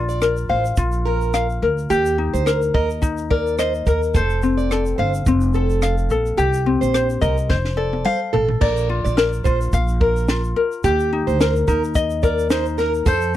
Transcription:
0.00 0.46 A#1 medium
0.00 0.77 F4 soft
0.00 1.90 D5 medium
0.09 0.36 D5 medium
0.09 shaker medium
0.22 1.06 A#4 medium
0.22 cross-stick medium
0.22 shaker medium
0.37 shaker soft
0.49 0.76 A1 medium
0.49 0.64 C5 medium
0.49 1.33 F5 medium
0.65 shaker soft
0.76 1.58 A#1 medium
0.76 1.96 F4 medium
0.76 kick medium
0.76 shaker medium
0.92 shaker soft
1.05 1.46 A#4 medium
1.05 1.62 A#4 soft
1.21 shaker soft
1.34 1.96 F5 medium
1.34 cross-stick loud
1.34 shaker medium
1.50 shaker soft
1.62 1.88 D2 medium
1.62 2.46 A#4 medium
1.62 cross-stick soft
1.78 shaker soft
1.90 2.30 D#2 medium
1.90 2.46 G4 medium
1.90 2.17 G4 medium
1.90 shaker medium
2.05 shaker medium
2.18 3.01 D#4 medium
2.34 2.71 D2 medium
2.34 2.60 C5 medium
2.34 shaker soft
2.46 3.29 A#4 medium
2.46 cross-stick medium
2.46 shaker medium
2.62 shaker soft
2.74 3.82 D#2 medium
2.74 2.89 A#4 medium
2.74 3.58 D#5 medium
2.74 kick medium
2.90 shaker soft
3.02 4.20 D#4 medium
3.02 kick medium
3.02 shaker medium
3.17 shaker medium
3.30 3.86 A#4 medium
3.30 3.57 D5 medium
3.30 kick medium
3.47 shaker soft
3.58 3.73 C5 medium
3.58 4.21 D#5 medium
3.58 cross-stick medium
3.58 shaker medium
3.74 shaker soft
3.87 4.16 D#2 medium
3.87 4.01 A#4 medium
3.87 4.15 A#4 soft
3.87 kick medium
3.87 cross-stick soft
3.87 shaker soft
4.03 shaker soft
4.14 4.94 F1 medium
4.14 4.41 A4 medium
4.14 6.38 C5 medium
4.14 kick medium
4.14 shaker medium
4.30 shaker soft
4.42 5.27 C4 medium
4.42 shaker soft
4.58 4.84 D5 medium
4.58 shaker soft
4.71 5.54 A4 medium
4.71 cross-stick medium
4.71 shaker medium
4.86 shaker soft
4.98 5.24 G1 medium
4.98 5.13 C5 medium
4.98 5.81 F5 medium
5.14 shaker medium
5.26 6.06 F1 loud
5.26 6.66 C4 medium
5.26 kick medium
5.26 shaker medium
5.41 shaker soft
5.54 5.95 A4 medium
5.54 6.10 A4 medium
5.54 shaker soft
5.70 shaker soft
5.82 6.44 F5 medium
5.82 cross-stick medium
5.82 shaker medium
5.98 shaker soft
6.10 6.36 A#1 medium
6.10 6.45 A4 medium
6.10 shaker soft
6.26 shaker soft
6.37 6.78 C2 medium
6.37 6.64 G4 medium
6.37 7.50 G4 medium
6.37 shaker medium
6.53 shaker medium
6.66 7.56 C4 medium
6.81 7.19 A#1 medium
6.81 7.08 C5 medium
6.81 shaker medium
6.94 7.48 C5 medium
6.94 cross-stick medium
6.94 shaker medium
7.10 shaker soft
7.21 7.51 C2 medium
7.21 7.36 A#4 medium
7.21 7.56 D#5 medium
7.21 kick medium
7.21 shaker soft
7.38 shaker soft
7.49 8.02 F1 medium
7.49 8.67 C5 medium
7.49 kick medium
7.49 snare soft
7.65 snare soft
7.77 8.32 A4 soft
7.77 8.05 D5 medium
7.93 high tom medium
8.05 8.20 C5 medium
8.05 9.74 F5 medium
8.05 mid tom medium
8.33 8.59 A1 medium
8.33 8.48 A4 medium
8.33 8.67 A4 soft
8.33 floor tom medium
8.48 floor tom medium
8.61 9.01 A#1 medium
8.61 8.88 A#4 medium
8.61 9.73 D5 medium
8.61 kick loud
8.61 crash medium
8.77 shaker medium
8.89 9.44 F4 medium
9.04 9.42 A#1 medium
9.04 9.31 D5 medium
9.04 shaker medium
9.17 10.01 A#4 medium
9.17 snare medium
9.17 shaker medium
9.33 shaker soft
9.44 9.71 A#1 medium
9.44 10.28 F4 medium
9.44 9.59 C5 medium
9.44 kick medium
9.44 shaker medium
9.61 shaker medium
9.72 10.52 A#1 loud
9.72 10.91 F5 medium
9.72 kick medium
9.72 shaker medium
9.88 shaker soft
10.01 10.41 A#4 medium
10.01 10.56 A#4 medium
10.01 kick medium
10.16 shaker soft
10.28 10.91 F4 soft
10.28 snare medium
10.28 shaker medium
10.44 shaker soft
10.56 11.41 A#4 medium
10.72 shaker soft
10.84 11.24 D#2 medium
10.84 11.11 G4 medium
10.84 11.40 G4 medium
10.84 kick loud
10.84 shaker medium
10.99 shaker soft
11.13 11.66 D#4 medium
11.27 11.64 D2 medium
11.27 11.54 C5 medium
11.27 shaker medium
11.41 12.22 A#4 medium
11.41 snare medium
11.41 shaker medium
11.56 shaker soft
11.68 13.03 D#2 medium
11.68 12.49 D#4 medium
11.68 11.82 A#4 medium
11.68 kick medium
11.68 shaker medium
11.84 shaker medium
11.95 13.13 D#5 medium
11.95 kick medium
11.95 shaker medium
12.10 shaker medium
12.23 12.78 A#4 medium
12.23 12.49 D5 medium
12.23 kick medium
12.23 shaker soft
12.39 shaker soft
12.50 13.12 D#4 medium
12.50 12.65 C5 medium
12.50 snare loud
12.50 shaker medium
12.66 shaker soft
12.78 12.93 A#4 medium
12.78 13.07 A#4 medium
12.78 snare soft
12.78 shaker medium
12.94 shaker soft
13.06 13.37 F2 loud
13.06 13.33 A4 medium
13.06 13.37 C5 medium
13.06 kick loud
13.06 tambourine soft
13.06 shaker medium
13.21 shaker medium

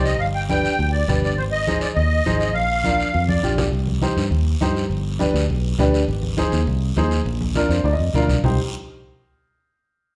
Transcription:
0.00 0.19 C2 loud
0.00 0.11 D#4 medium
0.00 0.12 G4 medium
0.00 0.12 C5 medium
0.05 0.20 D#5 medium
0.05 short guiro medium
0.19 0.67 G1 medium
0.19 0.26 F5 medium
0.19 high conga soft
0.19 long guiro medium
0.35 0.41 G5 medium
0.49 0.70 D4 medium
0.49 0.70 G4 medium
0.49 0.71 B4 medium
0.49 0.90 G5 loud
0.49 high conga medium
0.49 short guiro medium
0.65 short guiro medium
0.79 1.02 D2 loud
0.79 high conga soft
0.79 long guiro medium
0.92 1.21 D5 medium
1.08 1.37 G1 loud
1.08 1.29 D4 medium
1.08 1.29 G4 medium
1.08 1.29 B4 medium
1.08 high conga medium
1.08 low conga medium
1.08 short guiro medium
1.22 1.36 D5 medium
1.22 short guiro medium
1.37 1.85 G#1 medium
1.37 1.44 C5 medium
1.37 high conga soft
1.37 long guiro medium
1.51 1.79 D#5 medium
1.67 1.88 D#4 medium
1.67 1.88 G#4 medium
1.67 1.88 C5 medium
1.67 high conga medium
1.67 short guiro medium
1.81 1.88 D5 medium
1.81 short guiro medium
1.95 2.20 D#2 loud
1.95 2.38 D#5 loud
1.95 high conga soft
1.95 long guiro medium
2.26 2.55 G#1 medium
2.26 2.47 D#4 medium
2.26 2.47 G#4 medium
2.26 2.47 C5 medium
2.26 high conga medium
2.26 short guiro medium
2.39 2.54 D#5 medium
2.39 short guiro medium
2.54 3.03 A#1 loud
2.54 3.24 F5 medium
2.54 high conga soft
2.54 long guiro medium
2.84 3.05 D4 medium
2.84 3.05 F4 medium
2.84 3.06 A#4 medium
2.84 high conga medium
2.84 short guiro medium
3.00 short guiro medium
3.14 3.38 F2 medium
3.14 high conga soft
3.14 long guiro medium
3.28 3.56 D5 medium
3.28 high conga loud
3.43 3.67 A#1 medium
3.43 3.64 D4 medium
3.43 3.64 F4 medium
3.43 3.64 G4 medium
3.43 short guiro medium
3.58 3.65 D5 medium
3.58 low conga loud
3.58 short guiro medium
3.72 4.08 C2 medium
3.72 long guiro medium
3.87 high conga medium
4.02 4.23 D#4 medium
4.02 4.23 G4 medium
4.02 4.23 C5 medium
4.02 high conga medium
4.02 short guiro medium
4.17 4.29 G2 medium
4.17 short guiro medium
4.31 4.55 D#2 loud
4.31 long guiro medium
4.61 4.85 G2 medium
4.61 4.82 D#4 medium
4.61 4.82 G4 medium
4.61 4.82 C5 loud
4.61 high conga medium
4.61 short guiro medium
4.76 short guiro medium
4.89 5.25 G1 medium
4.89 long guiro medium
5.19 5.40 D4 medium
5.19 5.41 G4 medium
5.19 5.41 B4 loud
5.19 high conga medium
5.19 short guiro medium
5.34 5.46 D2 loud
5.34 short guiro medium
5.49 5.73 B1 loud
5.49 long guiro medium
5.79 6.02 D2 medium
5.79 6.00 D4 loud
5.79 6.00 G4 medium
5.79 6.00 B4 loud
5.79 high conga medium
5.79 low conga medium
5.79 short guiro medium
5.94 short guiro medium
6.08 6.44 G#1 loud
6.08 long guiro medium
6.22 high conga medium
6.37 6.58 D#4 medium
6.37 6.59 G#4 medium
6.37 6.59 C5 loud
6.37 high conga medium
6.37 short guiro medium
6.52 6.64 D#2 loud
6.52 short guiro medium
6.67 6.91 C2 loud
6.67 long guiro medium
6.96 7.20 D#2 medium
6.96 7.18 D#4 medium
6.96 7.18 G#4 medium
6.96 7.18 C5 loud
6.96 high conga medium
6.96 short guiro medium
7.11 short guiro medium
7.26 7.61 A#1 medium
7.26 long guiro medium
7.41 high conga medium
7.55 7.76 D4 loud
7.55 7.76 F4 medium
7.55 7.77 A#4 loud
7.55 high conga medium
7.55 short guiro medium
7.69 7.81 F2 loud
7.69 7.84 C5 medium
7.69 short guiro medium
7.84 7.96 D2 loud
7.84 7.92 D5 medium
7.84 long guiro medium
7.93 8.13 D#5 medium
7.99 8.13 F2 medium
8.14 8.27 D2 medium
8.14 8.35 D4 medium
8.14 8.35 F4 medium
8.14 8.36 A#4 loud
8.14 8.22 F5 medium
8.14 high conga medium
8.14 low conga medium
8.14 short guiro medium
8.22 8.43 A#5 medium
8.29 8.42 C2 medium
8.29 low conga medium
8.29 short guiro medium
8.43 8.57 C2 medium
8.43 8.58 D#4 medium
8.43 8.58 G4 medium
8.43 8.58 C5 medium
8.43 low conga loud
8.43 long guiro medium

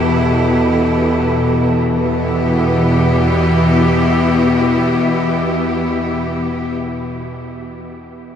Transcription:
0.00 1.76 E2 medium
0.00 1.76 B2 medium
0.00 1.75 E3 medium
0.00 1.76 B3 medium
0.00 1.77 E4 medium
0.00 1.75 G4 medium
0.00 1.78 A4 medium
1.76 6.51 E2 medium
1.76 6.51 B2 medium
1.76 6.50 E3 medium
1.93 6.67 B3 medium
2.08 6.76 E4 medium
2.24 6.77 G4 medium

